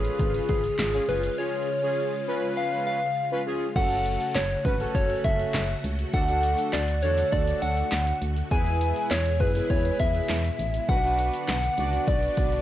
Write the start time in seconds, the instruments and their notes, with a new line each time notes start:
Already playing: fm bass A1, string machine C#3 G#3 F4, analog polysynth C#4 F4 B4, soft synth lead G#4
0.05 closed hi-hat
0.19 fm bass G#1, kick, closed hi-hat
0.34 closed hi-hat
0.49 fm bass G#1, soft synth lead G#4, kick, closed hi-hat
0.64 closed hi-hat
0.79 fm bass G#1, snare, clap, closed hi-hat
0.94 analog polysynth C#4 F4 G#4, closed hi-hat
1.08 fm bass F#1, analog polysynth C#4 F4 G#4, soft synth lead B4, closed hi-hat
1.23 closed hi-hat
1.38 analog polysynth C#4 F4 G#4, soft synth lead C#5
1.83 analog polysynth C#4 F4 G#4
2.27 analog polysynth C#4 F4 B4
2.57 soft synth lead F5
2.87 soft synth lead F5
3.31 analog polysynth C#4 F4 B4
3.46 analog polysynth C#4 F4 G#4
3.76 fm bass F#1, string machine C#3 A3 F#4, analog polysynth C#4 F#4 A4, soft synth lead F#5, kick, closed hi-hat, crash
3.91 closed hi-hat
4.06 closed hi-hat
4.21 closed hi-hat
4.35 fm bass F#1, soft synth lead C#5, snare, clap, closed hi-hat
4.50 closed hi-hat
4.65 fm bass G#1, analog polysynth C#4 F#4 B4, soft synth lead B4, kick, closed hi-hat
4.80 analog polysynth C#4 F#4 A4, closed hi-hat
4.95 fm bass F#1, soft synth lead C#5, kick, closed hi-hat
5.10 closed hi-hat
5.24 fm bass F#1, soft synth lead E5, kick, closed hi-hat
5.39 closed hi-hat
5.54 fm bass F#1, snare, clap, closed hi-hat
5.69 closed hi-hat
5.84 fm bass C#2, closed hi-hat
5.99 closed hi-hat
6.13 fm bass D2, string machine D3, analog polysynth D4 F#4 A4, soft synth lead F#5, kick, closed hi-hat
6.28 analog polysynth D4 F#4 A4, closed hi-hat
6.43 closed hi-hat
6.58 closed hi-hat
6.73 fm bass D2, soft synth lead D5, snare, clap, closed hi-hat
6.88 closed hi-hat
7.02 fm bass E2, analog polysynth D4 F#4 A4, soft synth lead C#5, closed hi-hat
7.18 closed hi-hat
7.32 fm bass D2, soft synth lead D5, kick, closed hi-hat
7.47 closed hi-hat
7.62 fm bass D2, soft synth lead F#5, closed hi-hat
7.77 closed hi-hat
7.92 fm bass D2, snare, clap, closed hi-hat
8.07 closed hi-hat
8.22 fm bass D2, closed hi-hat
8.36 closed hi-hat
8.51 fm bass E2, string machine B2 G#3 E4, analog polysynth E4 G#4 B4, soft synth lead G#5, kick, closed hi-hat
8.66 closed hi-hat
8.81 closed hi-hat
8.96 closed hi-hat
9.11 fm bass E2, soft synth lead C#5, snare, clap, closed hi-hat
9.26 closed hi-hat
9.40 fm bass F#2, analog polysynth E4 G#4 B4, soft synth lead B4, kick, closed hi-hat
9.55 analog polysynth E4 G#4 B4, closed hi-hat
9.70 fm bass E2, soft synth lead C#5, kick, closed hi-hat
9.85 closed hi-hat
10.00 fm bass E2, soft synth lead E5, kick, closed hi-hat
10.14 closed hi-hat
10.29 fm bass E2, snare, clap, closed hi-hat
10.45 closed hi-hat
10.59 fm bass A1, closed hi-hat
10.74 closed hi-hat
10.89 fm bass B1, string machine D3 B3 D4, analog polysynth D4 F#4 B4, soft synth lead F#5, kick, closed hi-hat
11.04 analog polysynth D4 F#4 B4, closed hi-hat
11.19 closed hi-hat
11.34 closed hi-hat
11.48 fm bass B1, soft synth lead F#5, snare, clap, closed hi-hat
11.63 closed hi-hat
11.78 fm bass C#2, analog polysynth D4 F#4 D5, closed hi-hat
11.93 closed hi-hat
12.08 fm bass B1, soft synth lead D5, kick, closed hi-hat
12.23 closed hi-hat
12.37 fm bass B1, kick, closed hi-hat
12.52 closed hi-hat